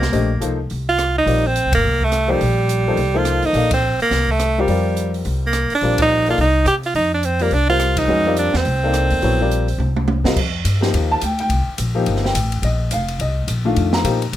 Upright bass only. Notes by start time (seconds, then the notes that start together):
Already playing: C2
0.13 A#1
0.42 C2
0.71 C2
1.26 A#1
1.66 C2
1.75 G1
1.85 C2
2.41 A#1
2.96 C2
3.43 E2
3.53 A#1
4.00 muted upright bass stroke
4.10 C2
4.68 F2
5.25 C2
5.71 muted upright bass stroke
5.81 A#1
6.38 C2
6.66 C3
6.94 F2
7.51 C2
8.08 F2
8.54 E2
8.65 C2
9.11 D#2
9.23 A#1
9.78 C2
10.36 F2
10.65 G2
10.94 D#2
11.22 D2
11.49 C2
11.68 muted upright bass stroke
11.78 A#1
12.06 G1
12.35 A1
12.62 A#1
12.91 F1
13.19 C2
13.47 A#1
13.77 F2
14.04 A#2
14.32 G2